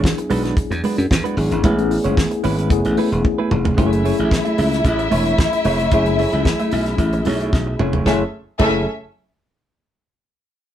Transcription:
Already playing: F#3 B3 D4 E4 G#4
0.03 muted clean electric guitar stroke, kick, snare
0.18 muted clean electric guitar stroke, closed hi-hat
0.30 B1 G#3 D4 F#4 B4, open hi-hat
0.44 G#3 D4 F#4 B4, snare, closed hi-hat
0.57 kick, closed hi-hat
0.71 E2, muted clean electric guitar stroke, closed hi-hat
0.84 G#3 D4 F#4 B4, open hi-hat
0.98 F#2, muted clean electric guitar stroke, closed hi-hat
1.11 E2, muted clean electric guitar stroke, kick, snare
1.24 G#3 D4 F#4 B4, closed hi-hat
1.37 G#1 F#3 B3 D4 E4 G#4, muted clean electric guitar stroke, open hi-hat
1.51 G#1, muted clean electric guitar stroke, closed hi-hat
1.62 A1 G#3 A3 B3 C#4 E4 G#4 B4, kick, closed hi-hat
1.78 muted clean electric guitar stroke, closed hi-hat
1.91 muted clean electric guitar stroke, open hi-hat
2.04 F#1 G#3 C#4 E4 C#5, closed hi-hat
2.17 muted clean electric guitar stroke, kick, snare
2.31 muted clean electric guitar stroke, closed hi-hat
2.44 G#1 G#3 C#4 E4 B4, open hi-hat
2.58 G#3 C#4 E4 B4, closed hi-hat
2.69 F#1 A3 B3 C#4 E4 G#4, kick, closed hi-hat
2.85 A1, muted clean electric guitar stroke, closed hi-hat
2.97 A3 E4 G#4 B4, open hi-hat
3.12 E1, closed hi-hat
3.24 muted clean electric guitar stroke, kick, high tom
3.38 A3 E4 G#4 B4
3.51 F1, mid tom
3.65 muted clean electric guitar stroke, floor tom
3.77 F#1 F#3 A3 C#4 E4 F#4 G#4 C#5 E5, kick, closed hi-hat
3.86 G#4
3.92 muted clean electric guitar stroke, closed hi-hat
4.04 A3 E4 G#4 C#5, open hi-hat
4.18 A1 A3 E4 G#4 E5, closed hi-hat
4.31 muted clean electric guitar stroke, kick, snare
4.45 A3 E4 G#4 E5, closed hi-hat
4.57 C#2 A3 E4 G#4 E5, open hi-hat
4.72 muted clean electric guitar stroke, snare, closed hi-hat
4.85 A1, muted clean electric guitar stroke, kick, closed hi-hat
4.99 muted clean electric guitar stroke, closed hi-hat
5.11 E1 A3 E4 G#4 C#5, open hi-hat
5.26 A3 G#4 C#5, closed hi-hat
5.39 kick, snare
5.53 muted clean electric guitar stroke, closed hi-hat
5.65 F1 A3 E4 G#4 C#5, open hi-hat
5.79 A3 E4 G#4 C#5, closed hi-hat
5.90 F#1 F#3 A3 C#4 E4 G#4 C#5, kick, closed hi-hat
6.06 muted clean electric guitar stroke, closed hi-hat
6.19 A3 E4 G#4 C#5, open hi-hat
6.32 C#2 A3 E4 G#4 E5, closed hi-hat
6.45 muted clean electric guitar stroke, kick, snare
6.59 A3 E4 G#4 E5, closed hi-hat
6.71 B1 A3 E4 G#4 E5, open hi-hat
6.86 muted clean electric guitar stroke, snare, closed hi-hat
6.98 A1, muted clean electric guitar stroke, kick, closed hi-hat
7.13 muted clean electric guitar stroke, closed hi-hat
7.25 B1 A3 E4 G#4 C#5, open hi-hat
7.41 A3 E4 G#4 C#5, closed hi-hat
7.53 B1, kick, snare
7.67 muted clean electric guitar stroke
7.79 F1 F#3 A3 C#4 E4 G#4 C#5, mid tom
7.93 A3 E4 G#4 C#5, floor tom
8.06 F#1 F#3 A3 C#4 E4 G#4 A4 C#5 E5, kick, snare
8.59 F#1 F#3 A3 C#4 E4 G#4 A4 C#5 E5, kick, crash

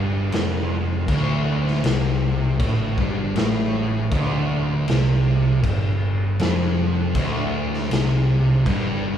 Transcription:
Already playing: G1 G2
0.32 F1 F2, snare, crash
1.08 D1 D2, kick, crash
1.67 snare
1.84 C2 C3, snare, crash
2.60 A1 A2, kick, crash
2.98 G1 G2, kick
3.36 A1 A2, snare, crash
4.11 D1 D2, kick, crash
4.88 C2 C3, snare, crash
5.63 G1 G2, kick, crash
6.39 F1 F2, snare, crash
7.15 D1 D2, kick, crash
7.74 snare
7.91 C2 C3, snare, crash
8.66 G1 G2, kick, crash

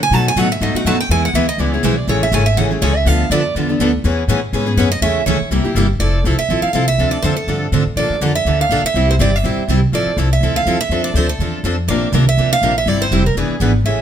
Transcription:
Already playing: C#3
0.03 G#5
0.11 B2 F#3 A3 D#4 F#4 B4 A5
0.28 G#5
0.36 A2 B2 F#3 A3 D#4 F#4 B4 F#5
0.52 E5
0.61 G#2 B2 F#3 A3 D#4 F#4 B4 D#5
0.74 A3 D#4 F#4 F#5, muted upright bass stroke
0.84 F#2 B2 F#3 A3 D#4 F#4 B4 A5
1.00 G5
1.09 E2 E3 G#3 B3 E4 G#4 G#5
1.25 F#5
1.33 D2 E3 G#3 B3 E4 G#4 E5
1.49 D#5
1.58 C#2 E3 G#3 B3 E4 G#4 D5
1.73 B3 E4 G#4 C#5
1.83 B1 E3 G#3 B3 E4 G#4 C5
1.98 D5
2.07 A1 C#3 E3 G#3 A3 C#4 E4 G#4 A4 C#5
2.23 E5
2.32 G#1 C#3 E3 G#3 A3 C#4 E4 G#4 A4 G#5
2.46 E5
2.57 A1 C#3 E3 G#3 A3 C#4 E4 G#4 A4 F#5
2.71 A3 C#4 G#4
2.82 C#2 C#3 E3 G#3 A3 C#4 E4 G#4 A4 C#5
2.97 E5
3.05 D2 D3 F3 B3 D4 A4 F5
3.30 F2 D3 F3 B3 D4 A4 D5
3.55 E2 D3 F3 B3 D4 A4
3.69 B3 D4 A4
3.79 D2 D3 F3 B3 D4 A4
4.04 E2 E3 G#3 B3 C#4 G#4 B4
4.28 A2 E3 G#3 B3 C#4 G#4 B4
4.53 G#2 E3 G#3 B3 C#4 G#4 B4
4.66 B3 C#4 G#4
4.77 F#2 E3 G#3 B3 C#4 G#4 B4 C#5
4.92 D#5
5.01 E2 C#3 E3 G#3 A3 C#4 E4 G#4 A4 E5
5.26 D2 C#3 E3 G#3 A3 C#4 E4 G#4 A4 C#5
5.41 muted upright bass stroke
5.51 C2 C3 G3 A#3 E4 G4
5.64 A#3 E4 G4, muted upright bass stroke
5.75 G1 C3 G3 A#3 E4 G4
5.99 F1 F3 C4 E4 A4 D5
6.24 C2 F3 C4 E4 A4
6.39 E5
6.49 A1 F3 C4 E4 A4
6.62 F5, muted upright bass stroke
6.73 C2 F3 C4 E4 A4 F5
6.88 E5
6.98 D2 D3 F3 C4 D4 A4
7.11 D5
7.22 F2 D3 F3 C4 D4 A4 C5
7.37 A4
7.47 G2 D3 F3 C4 D4 A4
7.72 A2 D3 F3 C4 D4 A4
7.86 muted upright bass stroke
7.96 A#2 D3 F3 A#3 D4 A4 D5
8.10 muted upright bass stroke
8.21 F2 D3 F3 A#3 D4 A4
8.35 E5
8.45 D2 D3 F3 A#3 D4 A4
8.61 F5
8.69 A#1 D3 F3 A#3 D4 A4
8.83 E5, muted upright bass stroke
8.94 C2 C3 G3 C4 E4 G4
9.11 C5
9.19 G1 C3 G3 C4 E4 G4 D5
9.36 E5
9.44 A#1 C3 G3 C4 E4 G4
9.57 muted upright bass stroke
9.68 C2 C3 G3 C4 E4 G4
9.92 A1 F3 C4 E4 A4 D5
10.06 muted upright bass stroke
10.17 C2 F3 C4 E4 A4
10.33 E5
10.41 D2 F3 C4 E4 A4
10.56 F5
10.66 E2 F3 C4 E4 A4
10.81 E5
10.89 F2 F3 C4 D4 A4
11.04 D5
11.14 D2 F3 C4 D4 A4 C5
11.29 A4
11.39 E2 F3 C4 D4 A4
11.64 F2 F3 C4 D4 A4
11.88 A#1 C3 F3 A#3 D4 A#4 D5
12.12 C2 C3 F3 A#3 D4 A#4
12.29 E5
12.37 D2 C3 F3 A#3 D4 A#4
12.53 F5
12.62 A#1 C3 F3 A#3 D4 A#4
12.78 E5
12.86 G1 C3 G3 C4 E4 G4 D5
13.02 C5
13.11 F1 C3 G3 C4 E4 G4
13.26 A#4
13.35 E1 E3 B3 D4 G#4 B4
13.49 muted upright bass stroke
13.60 G#1 E3 B3 D4 G#4 B4
13.84 A1 C#3 E3 G#3 A3 C#4 E4 G#4 A4 E5

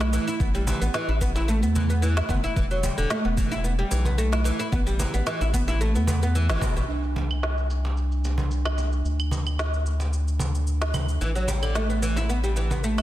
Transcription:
Already playing: B1
0.00 E4, snare, cabasa
0.13 E3, cajon slap, cabasa
0.27 E4, cabasa
0.40 A1 B3, kick, cabasa
0.55 G3, cabasa
0.67 E3, cajon bass, cajon slap, cabasa
0.81 A1 B3, cabasa
0.94 E3, snare, cabasa
1.08 A1 E4
1.21 B3, kick, cajon slap, cabasa
1.36 E4, cajon slap, cabasa
1.48 A3, cabasa
1.62 E2 B3, cabasa
1.75 E3, cajon bass, cabasa
1.90 B3, cabasa
2.02 E3, cabasa
2.17 E4, snare, cabasa
2.29 G1 B3, cajon bass, kick, cajon slap, cabasa
2.44 E4, cabasa
2.56 E1 E3, kick, cabasa
2.71 F#3, cabasa
2.83 G3, cajon bass, cajon slap, cabasa
2.98 E1 D3, cabasa
3.10 A3, snare, cabasa
3.25 E1 B3
3.37 E3, kick, cajon slap, cabasa
3.51 E4, cajon slap, cabasa
3.64 B3, cabasa
3.79 G3
3.91 B1 E3, cajon slap, cabasa
4.05 B3, cajon bass, cabasa
4.18 A3, cabasa
4.32 E4, snare, cabasa
4.44 E3, cajon slap, cabasa
4.59 E4, cabasa
4.72 A1 B3, kick, cabasa
4.87 G3, cabasa
4.99 E3, cajon bass, cajon slap, cabasa
5.14 A1 B3, cabasa
5.27 E3, snare, cabasa
5.41 A1 E4, cabasa
5.54 B3, kick, cajon slap, cabasa
5.68 E4, cajon slap, cabasa
5.81 A3, cabasa
5.95 E2 B3, cabasa
6.07 B3, cajon bass, cabasa
6.23 B3, cabasa
6.35 E3, cabasa
6.49 G1 E3, snare, cabasa
6.61 B2, cajon bass, kick, cajon slap, cabasa
6.76 A1 B2, cabasa
6.88 C2 D4, cabasa
7.04 cabasa
7.16 cajon bass, cajon slap, cabasa
7.31 cabasa, claves
7.43 snare, cabasa
7.58 cabasa
7.70 cajon slap, cabasa
7.84 cajon slap, cabasa
7.97 cabasa
8.12 cabasa
8.24 cajon slap, cabasa
8.38 cajon bass, cabasa
8.51 cabasa
8.65 snare, cabasa, claves
8.78 cajon slap, cabasa
8.92 cabasa
9.05 D2, cabasa
9.20 cabasa, claves
9.31 cajon bass, cajon slap, cabasa
9.47 cabasa, claves
9.59 snare, cabasa
9.74 cabasa
9.86 cajon slap, cabasa
10.00 cajon slap, cabasa
10.13 cabasa
10.28 cabasa
10.39 cajon bass, cabasa
10.55 cabasa
10.67 cabasa
10.82 snare, cabasa
10.94 cajon bass, cajon slap, cabasa, claves
11.09 cabasa
11.21 A1 E3, cabasa
11.35 F#3, cabasa
11.48 G3, cajon bass, cajon slap, cabasa
11.63 D3, cabasa, claves
11.75 A3, snare, cabasa
11.90 B3, cabasa
12.02 E3, cajon slap, cabasa
12.16 E4, cajon slap, cabasa
12.29 B3, cabasa
12.44 G3, cabasa
12.56 E3, cajon slap, cabasa
12.71 B3, cajon bass, cabasa
12.84 A3, cabasa
12.98 E4, snare, cabasa, claves

